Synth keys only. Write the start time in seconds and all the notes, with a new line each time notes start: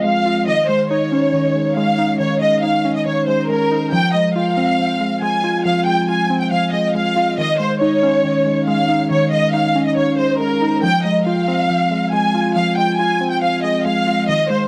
Already playing: F3 G#3 C4 F4
0.04 G#3
0.26 F4
0.47 D#3
0.69 G#3
0.90 D#4
1.12 C#4
1.33 D#3
1.55 G#3
1.77 G#3
1.98 D#4
2.20 D#3
2.42 G#3
2.63 D#4
2.85 C#4
3.06 D#3
3.28 G#3
3.49 G#3
3.71 D#4
3.93 F3
4.14 G#3
4.36 F4
4.57 C4
4.79 F3
5.01 G#3
5.22 G#3
5.44 F4
5.65 F3
5.87 G#3
6.08 F4
6.30 C4
6.52 F3
6.73 G#3
6.95 G#3
7.16 F4
7.38 D#3
7.60 G#3
7.81 D#4
8.03 C#4
8.24 D#3
8.46 G#3
8.68 G#3
8.89 D#4
9.11 D#3
9.32 G#3
9.54 D#4
9.75 C#4
9.97 D#3
10.19 G#3
10.40 G#3
10.62 D#4
10.83 F3
11.05 G#3
11.26 F4
11.48 C4
11.70 F3
11.91 G#3
12.13 G#3
12.34 F4
12.56 F3
12.77 G#3
12.99 F4
13.21 C4
13.42 F3
13.64 G#3
13.86 G#3
14.07 F4
14.29 D#3
14.50 G#3